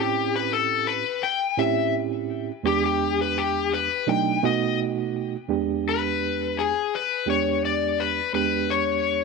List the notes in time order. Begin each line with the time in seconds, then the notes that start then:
Already playing: A2 C4 C#4 E4 G4
0.00 G4
0.36 B4
0.53 A4
0.87 B4
1.23 G5
1.57 A2 C4 C#4 E4 G4 E5
2.63 E2 G#3 B3 D4 G4
2.86 G4
3.21 B4
3.38 G4
3.74 B4
4.07 B2 F#3 A3 D4 D#4 G5
4.43 B2 A3 B3 D#4 F#4 D#5
5.48 E2 G#3 B3 D4 G4
5.89 B4
6.59 G#4
6.95 B4
7.26 E2 G#3 B3 D4 G4 C#5
7.65 D5
8.00 B4
8.33 E2 G#3 B3 D4 G4 B4
8.70 C#5